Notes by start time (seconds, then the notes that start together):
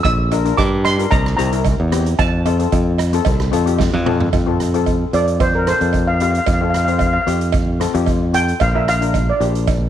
0.03 A#1 E6, kick, closed hi-hat, cowbell
0.31 D4 F4 A#4, closed hi-hat, cowbell
0.45 D4 F4 A#4, closed hi-hat
0.57 G2 D6, kick, closed hi-hat, cowbell
0.85 C6, cross-stick, closed hi-hat, cowbell
0.98 D4 F4 A#4, closed hi-hat
1.11 C2 A#5, kick, closed hi-hat, cowbell
1.26 cross-stick
1.37 C2 C4 E4 G4 A#5, closed hi-hat
1.52 C4 E4 A#4, closed hi-hat
1.65 kick, closed hi-hat, cowbell
1.80 E2
1.92 C4 E4 G4, cross-stick, closed hi-hat
2.06 closed hi-hat
2.19 F2 A5, kick, closed hi-hat, cowbell
2.45 C4 F4 A4, closed hi-hat, cowbell
2.59 C4 F4 A4, closed hi-hat
2.72 F2, kick, closed hi-hat, cowbell
2.98 cross-stick, closed hi-hat, cowbell
3.13 C4 F4 A4, closed hi-hat
3.25 C2, kick, closed hi-hat, cowbell
3.40 cross-stick
3.52 F2 C4 F4 A4, closed hi-hat
3.66 C4 F4 G4, closed hi-hat
3.78 kick, snare, cowbell
3.93 F2, high tom
4.06 C4 F4 A4, mid tom
4.20 floor tom
4.33 F2, kick, closed hi-hat, cowbell
4.47 C4 F4 A4
4.60 cross-stick, closed hi-hat
4.74 C4 F4 A4, closed hi-hat
4.86 kick, closed hi-hat, cowbell
5.13 F2 C4 F4 A4 D5, closed hi-hat
5.28 closed hi-hat
5.40 C5, kick, closed hi-hat, cowbell
5.55 A#4
5.67 C4 F4 A4 C5, cross-stick, closed hi-hat
5.80 F2 C4 F4 A4, closed hi-hat
5.93 kick, closed hi-hat, cowbell
6.07 F5
6.14 F5
6.20 C4 F4 G4 F5, closed hi-hat
6.31 F5, closed hi-hat
6.38 F5
6.46 F2 F5, kick, closed hi-hat, cowbell
6.53 F5
6.61 C4 F4 A4 F5
6.70 F5
6.74 F5, cross-stick, closed hi-hat
6.85 C4 F4 F5, closed hi-hat
6.89 C5 F5
6.99 F5, kick, closed hi-hat, cowbell
7.06 F5
7.13 F5
7.21 F5
7.26 F2 C4 F4 G4, closed hi-hat
7.41 closed hi-hat
7.52 kick, closed hi-hat, cowbell
7.80 C4 F4 A4, cross-stick, closed hi-hat
7.94 F2 C4 F4 G4, closed hi-hat
8.06 kick, closed hi-hat, cowbell
8.33 C4 F4 A4 G5, closed hi-hat
8.48 closed hi-hat
8.60 A#1 F5, kick, closed hi-hat, cowbell
8.74 D4 F4 A#4 E5
8.88 F5, cross-stick, closed hi-hat
9.01 D4 F4 A#4, closed hi-hat
9.14 kick, closed hi-hat, cowbell
9.30 D5
9.40 A#1 D4 F4 G4, closed hi-hat
9.55 closed hi-hat
9.67 kick, closed hi-hat, cowbell